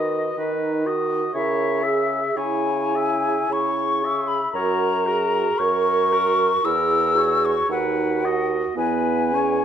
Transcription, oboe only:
Already playing: D#5
0.38 B4
0.87 D#5
1.33 C#5
1.83 E5
2.37 C#5
2.95 E5
3.52 C#5
4.04 E5
4.55 C#5
5.06 A#4
5.59 C#5
6.12 A#4
6.64 A#4
7.16 C#5
7.72 B4
8.25 D#5
8.77 B4
9.34 C#5

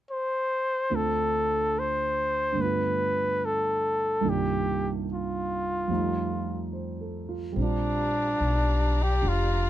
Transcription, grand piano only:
0.90 D2 D3 A3 C4 F4
2.52 G2 D3
2.58 A3 B3
2.64 F4
4.21 C2 G2 D#3 A#3 D4
4.25 F4
5.88 F2 F3 G3 A3
5.93 D#4
6.73 C5
7.01 A4
7.29 F4
7.52 G3 C4
7.59 D4 F4
9.22 D4 F4 G4

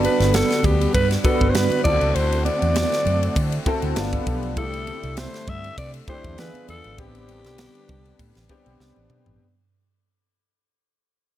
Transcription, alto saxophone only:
0.05 B4
0.34 A4
0.65 G4
0.95 B4
1.24 A4
1.49 C5
1.55 B4
1.84 D5
2.15 C5
2.45 D5
4.58 A4
5.18 C5
5.49 E5
5.78 D5
6.09 C5
6.39 B4
6.70 A4
7.00 G4

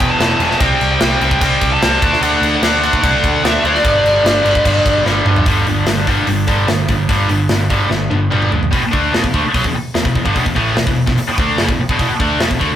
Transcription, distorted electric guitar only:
Already playing: E2 B2 E3
0.20 E2 B2 E3
0.41 E2 B2 E3
0.60 C3 G3 C4
1.00 C3 G3 C4
1.22 C3 G3 C4
1.42 C3 G3 C4
1.83 C3 G3 C4
2.02 D3 A3 D4
2.22 D3 A3 D4
2.62 D3 A3 D4
2.83 D3 A3 D4
3.03 D3 A3 D4
3.44 D3 A3 D4
3.63 D3 A3 D4
3.83 G2 D3 G3
4.24 G2 D3 G3
4.44 G2 D3 G3
4.65 G2 D3 G3
5.06 G2 D3 G3
5.26 G2 D3 G3
5.47 G2 D3 G3
5.68 G2 D3
5.88 G2 D3
6.08 G2 D3 G3
6.27 G2 D3
6.47 G2 D3 G3
6.67 G2 D3
6.89 G2 D3
7.09 G2 D3 G3
7.29 G2 D3
7.50 G2 D3
7.70 G2 D3 G3
7.90 G2 D3
8.11 G2 D3
8.31 G2 D3 G3
8.52 G2 D3
8.71 E2 B2
8.82 muted distorted electric guitar stroke
8.92 D3 A3 D4
9.12 E2 B2
9.24 E2 B2
9.33 D3 A3
9.44 muted distorted electric guitar stroke
9.54 B2 F#3
9.64 E2 B2
9.74 muted distorted electric guitar stroke
9.95 E2 B2
10.04 E2 B2
10.16 E2 B2
10.25 G2 D3
10.35 E2 B2
10.45 E2 B2
10.55 A2 E3 A3
10.75 E2 B2
10.87 E2 B2
11.06 E2 B2
11.18 muted distorted electric guitar stroke
11.28 muted distorted electric guitar stroke
11.38 D3 A3 D4
11.59 F#2 C#3
11.70 E2 B2
11.80 muted distorted electric guitar stroke
11.90 E2 B2
12.00 E2 B2
12.10 muted distorted electric guitar stroke
12.20 D3 A3 D4
12.40 E2 B2
12.50 E2 B2
12.59 D3 A3
12.71 muted distorted electric guitar stroke

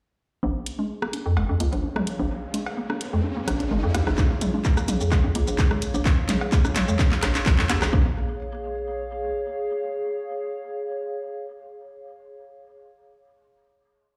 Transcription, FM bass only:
0.43 A#1
1.26 F2
1.37 F1
1.49 F2
1.60 C#2
1.73 A#1
2.20 A#1
3.13 F2
3.48 A#1
3.71 G#1
3.83 F2
3.94 D#2
4.07 A#1
4.18 A#1
5.01 F2
5.12 F1
5.24 F2
5.35 C#2
5.48 A#1
5.94 A#1
6.88 F2
7.23 A#1
7.46 G#1
7.59 F2
7.70 D#2
7.82 A#1
7.93 A#1

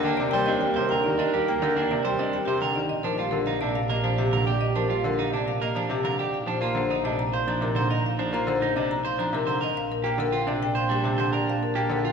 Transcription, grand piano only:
0.05 A#3
0.20 C3
0.34 G3
0.49 C4
0.63 G3
0.77 C3
0.92 D3
1.06 D#3
1.34 G3
1.49 A#3
1.62 D3
1.76 A#3
1.91 C3
2.05 G3
2.19 C4
2.34 G3
2.47 C3
2.62 D3
2.76 D#3
3.04 F3
3.18 G3
3.32 D3
3.62 C3
3.90 A#3
4.04 F3
4.18 C3
4.33 D3
4.76 F3
4.90 G3
5.04 D3
5.33 C3
5.62 A#3
5.75 F3
5.90 C3
6.04 D3
6.46 F3
6.61 A#3
6.75 D3
7.04 C3
7.47 F3
7.61 C3
7.75 D3
8.19 F3
8.33 A#3
8.47 D3
8.76 C3
9.19 F3
9.33 C3
9.47 D3
10.04 A#3
10.18 D3
10.47 C3
10.90 G3
11.04 C3
11.18 D3
11.75 A#3
11.89 D3

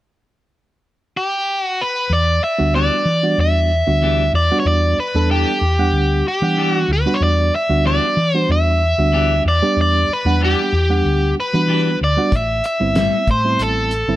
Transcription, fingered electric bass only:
2.10 E2
2.60 D2
3.05 E3
3.38 E2
3.87 D2
4.33 E2
4.65 E2
4.98 muted fingered electric bass stroke
5.14 E2
5.61 E2
5.93 D2
6.42 E3
6.88 D2
7.21 E2
7.69 D2
8.17 E3
8.49 E2
8.98 D2
9.45 E2
9.76 E2
10.09 muted fingered electric bass stroke
10.25 E2
10.72 E2
11.05 D2
11.54 E3
12.01 D2
12.32 A1
12.80 G1
13.27 A2
13.59 A1
14.08 G1

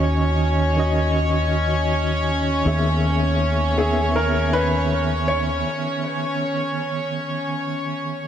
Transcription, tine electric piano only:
Already playing: D#3 C#4 F#4 D#5
0.77 D#3 C#4 F#4 D#5
2.65 D#3 B3 G#4 E5
3.78 D#3 B3 G#4 E5

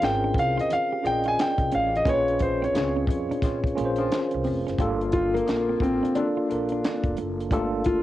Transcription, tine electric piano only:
Already playing: C#4 G#4 C5
0.00 C4 F4 G#4 A#4
0.07 C#4
1.03 C#4 F4 G#4 D5
1.12 D#5
2.05 C#4 F4 G#4 B4
2.14 C#5
2.74 C4 F4 G#4 C#5
2.80 C#4
3.75 C#4 F4 G#4 A#4
3.85 C5
4.79 A#3 D4 F4 A4
6.15 A#3 D4 F4 A4
6.49 A#3 D4 F4 A#4
7.51 A3 D4 F4 A4
7.57 A#3

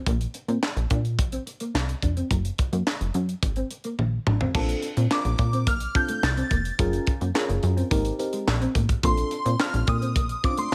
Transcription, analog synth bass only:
0.06 A#1
0.48 A#2
0.76 A#1
0.91 A#2
1.19 A#1
1.74 C2
2.02 F1
2.31 F#1
2.73 F#2
3.01 F#1
3.14 F#2
3.43 G#1
3.99 A#1
4.27 A1
4.55 A#1
4.97 A#2
5.25 A#1
5.39 A#2
5.67 A#1
6.23 C2
6.51 F1
6.79 F#1
7.21 F#2
7.49 F#1
7.63 F#2
7.91 G#1
8.47 A#1
8.75 A1
9.03 A#1
9.46 A#2
9.74 A#1
9.88 A#2
10.16 A#1

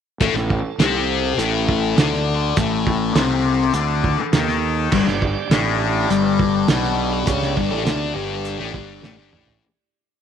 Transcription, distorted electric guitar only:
0.20 A2 A3
0.35 A2
0.79 C3 C4
1.39 A2 A3
1.97 D3 D4
2.57 A2 A3
3.16 C3 C4
3.75 D3 D4
4.19 muted distorted electric guitar stroke
4.33 D#3 D#4
4.92 G2 G3
5.07 G2
5.51 A2 A3
6.10 G2 G3
6.69 B2 B3
7.27 C#3 C#4
7.56 G2 G3
7.70 A2 A3
7.84 D3 D4
8.14 G2 G3
8.59 A2 A3
8.73 G2 G3
9.02 A2 A3
9.17 G2 G3
9.32 A2 A3

